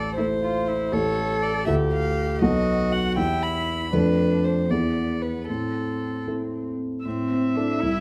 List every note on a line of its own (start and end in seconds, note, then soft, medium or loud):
0.00 0.15 A1 soft
0.00 0.15 A4 medium
0.00 0.16 D5 medium
0.17 0.89 A3 soft
0.17 0.25 E4 soft
0.17 0.89 E4 soft
0.17 0.89 A4 soft
0.17 0.94 C5 medium
0.42 0.69 F4 soft
0.68 0.94 E4 soft
0.92 1.65 A1 soft
0.92 1.63 A3 soft
0.92 1.64 G4 soft
0.92 1.67 A4 medium
0.92 1.64 A4 soft
0.92 1.44 C#5 medium
1.43 1.66 D5 medium
1.66 2.40 D2 soft
1.66 2.38 A3 soft
1.66 2.39 F4 soft
1.66 2.44 G4 medium
1.66 2.39 A4 soft
1.66 1.74 E5 medium
1.93 2.41 F5 medium
2.42 3.15 B1 soft
2.42 3.13 B3 soft
2.42 3.18 F#4 medium
2.42 3.13 F#4 soft
2.42 3.14 A4 soft
2.42 2.94 D#5 medium
2.92 3.17 F#5 medium
3.16 3.91 E2 soft
3.16 3.89 B3 soft
3.16 3.92 E4 medium
3.16 3.89 E4 soft
3.16 3.90 G4 soft
3.16 3.44 G5 medium
3.43 3.94 B5 medium
3.93 4.68 F2 soft
3.93 4.66 A3 soft
3.93 4.68 D4 medium
3.93 4.67 D4 soft
3.93 4.67 A4 soft
3.93 4.46 B4 medium
4.44 4.72 C5 soft
4.70 5.46 E2 soft
4.70 5.51 B3 soft
4.70 5.44 B3 soft
4.70 5.44 E4 soft
4.70 5.45 G#4 soft
4.70 5.24 D5 soft
5.22 5.47 B4 soft
5.48 6.25 A2 soft
5.48 6.66 C4 soft
5.48 6.25 A4 soft
6.27 7.01 C4 soft
6.27 7.01 E4 soft
6.27 7.02 A4 soft
7.05 7.80 A2 soft
7.05 7.57 C4 medium
7.05 8.00 E5 soft
7.31 7.72 C4 soft
7.56 7.83 D4 soft
7.56 7.79 E4 soft
7.56 7.80 A4 soft
7.81 8.00 C2 soft
7.81 8.00 E4 medium
7.81 8.00 E5 soft